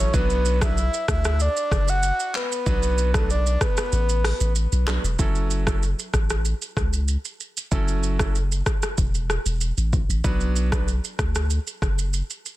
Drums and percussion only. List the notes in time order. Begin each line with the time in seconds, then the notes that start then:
0.14 kick, shaker
0.30 shaker
0.45 shaker
0.61 kick, cross-stick, shaker
0.78 shaker
0.94 shaker
1.08 kick, cross-stick, shaker
1.25 cross-stick, shaker
1.40 shaker
1.57 shaker
1.71 kick, cross-stick, shaker
1.88 shaker
2.03 shaker
2.20 shaker
2.35 clap, shaker
2.52 shaker
2.66 kick, shaker
2.83 shaker
2.98 shaker
3.14 kick, cross-stick, shaker
3.30 shaker
3.47 shaker
3.61 kick, cross-stick, shaker
3.77 cross-stick, shaker
3.92 shaker
4.09 shaker
4.25 cross-stick, open hi-hat, shaker
4.41 shaker
4.56 shaker
4.72 shaker
4.87 cross-stick, clap, shaker
5.05 shaker
5.19 kick, shaker
5.35 shaker
5.51 shaker
5.67 kick, cross-stick, shaker
5.83 shaker
5.99 shaker
6.14 kick, cross-stick, shaker
6.30 cross-stick, shaker
6.45 shaker
6.62 shaker
6.77 kick, cross-stick, shaker
6.93 shaker
7.08 shaker
7.25 shaker
7.40 shaker
7.57 shaker
7.72 kick, shaker
7.88 shaker
8.03 shaker
8.19 kick, cross-stick, shaker
8.35 shaker
8.52 shaker
8.66 kick, cross-stick, shaker
8.82 cross-stick, shaker
8.98 kick, shaker
9.15 shaker
9.30 cross-stick, shaker
9.46 shaker
9.61 shaker
9.78 shaker
9.93 kick, shaker
10.10 shaker
10.24 kick, shaker
10.41 shaker
10.56 shaker
10.72 kick, cross-stick, shaker
10.88 shaker
11.04 shaker
11.19 kick, cross-stick, shaker
11.35 cross-stick, shaker
11.50 shaker
11.67 shaker
11.82 kick, cross-stick, shaker
11.98 shaker
12.13 shaker
12.30 shaker
12.46 shaker